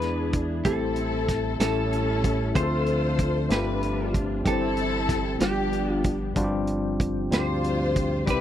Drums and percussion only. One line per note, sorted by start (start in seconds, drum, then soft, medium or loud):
0.02 snare soft
0.02 closed hi-hat soft
0.33 kick medium
0.33 closed hi-hat medium
0.65 kick medium
0.65 closed hi-hat medium
0.96 closed hi-hat soft
1.29 kick medium
1.29 snare soft
1.29 closed hi-hat medium
1.60 snare loud
1.60 closed hi-hat medium
1.93 closed hi-hat soft
2.24 kick medium
2.24 closed hi-hat medium
2.55 kick medium
2.55 closed hi-hat medium
2.86 closed hi-hat soft
3.19 kick medium
3.19 closed hi-hat medium
3.50 snare loud
3.50 closed hi-hat medium
3.83 closed hi-hat soft
4.14 kick medium
4.14 closed hi-hat medium
4.46 kick medium
4.46 closed hi-hat medium
4.77 closed hi-hat soft
5.09 kick medium
5.09 snare soft
5.09 closed hi-hat medium
5.40 snare loud
5.40 closed hi-hat medium
5.73 closed hi-hat soft
6.04 kick medium
6.04 closed hi-hat medium
6.36 kick medium
6.36 closed hi-hat medium
6.67 closed hi-hat soft
7.00 kick medium
7.00 closed hi-hat medium
7.32 snare loud
7.32 closed hi-hat medium
7.64 closed hi-hat soft
7.96 kick medium
7.96 closed hi-hat medium
8.27 kick medium
8.27 closed hi-hat medium